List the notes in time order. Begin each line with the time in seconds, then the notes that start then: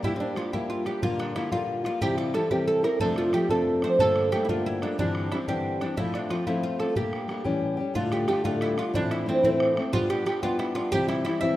0.03 G3 A#3 D4 E4 G4, bodhran
0.16 C4
0.20 D4
0.36 G3 A#3 D4 F4 G4, bodhran
0.52 G3 A#3 D4 E4 G4, bodhran
0.70 F4, bodhran
0.85 A#3 D4 G4, bodhran
1.02 A#2 D3 G3 A#3 F4, bodhran
1.19 D4, bodhran
1.35 D3 G3 A#3 E4 F4, bodhran
1.52 A#2 D3 G3 A#3 F4, bodhran
1.68 bodhran
1.84 G3 A#3 F4, bodhran
2.01 C3 E3 G3 C4 E4 G4, bodhran
2.18 F4, bodhran
2.34 E3 G3 C4 E4 A4, bodhran
2.50 C3 E3 G3 C4 E4 G4, bodhran
2.67 A4, bodhran
2.83 G3 C4 E4 A#4, bodhran
2.99 F2 C3 F3 A3 C4 D4 A4, bodhran
3.16 F4, bodhran
3.32 F3 A3 C4 D4 G4, bodhran
3.49 F2 C3 F3 A3 C4 D4 A4, bodhran
3.66 bodhran
3.82 F3 A3 C4 D4 C5, bodhran
3.99 G2 D3 G3 A3 A#3 D4 A4, bodhran
4.16 bodhran
4.32 G3 A3 A#3 D4 G4, bodhran
4.45 D4 E4
4.49 G2 D3 G3 A3 A#3 F4, bodhran
4.66 E4, bodhran
4.81 G3 A3 A#3 D4, bodhran
4.98 G2 D3 E3 G3 C4 D4, bodhran
5.15 bodhran
5.31 E3 G3 C4 D4 E4, bodhran
5.48 G2 D3 E3 G3 C4 D4 G4, bodhran
5.65 bodhran
5.80 E3 G3 C4 D4, bodhran
5.97 F3 A3 C4 E4 F4, bodhran
6.14 D4, bodhran
6.29 F3 A3 C4 F4, bodhran
6.47 F3 A3 C4 E4 F4, bodhran
6.63 F4, bodhran
6.79 A3 C4 F4 A4, bodhran
6.95 G3 A#3 D4 G4, bodhran
7.13 bodhran
7.28 G3 A#3 D4 G4, bodhran
7.44 A2 E3 G3 C#4 G4, bodhran
7.62 bodhran
7.77 G3 C#4 G4
7.94 D2 A2 D3 A3 D4 F4, bodhran
8.04 bodhran
8.12 G4, bodhran
8.27 D3 A3 D4 F4 G4, bodhran
8.44 D2 A2 D3 A3 D4 F4, bodhran
8.61 E4, bodhran
8.77 D3 A3 D4 F4, bodhran
8.94 A2 E3 A3 C4 D4 E4, bodhran
9.03 bodhran
9.11 E4, bodhran
9.26 E3 A3 C4 E4
9.43 A2 E3 A3 C4 E4, bodhran
9.60 bodhran
9.76 A3 C4 E4, bodhran
9.93 G3 B3 D4 F4 G4, bodhran
10.02 bodhran
10.10 G4, bodhran
10.25 G3 B3 D4 G4, bodhran
10.42 G3 B3 D4 F4 G4, bodhran
10.59 E4, bodhran
10.75 B3 D4 F4 G4, bodhran
10.92 C3 E3 G3 C4 E4 G4, bodhran
11.01 bodhran
11.08 E4, bodhran
11.24 E3 G3 C4 E4, bodhran
11.41 C3 E3 G3 C4 E4 E5, bodhran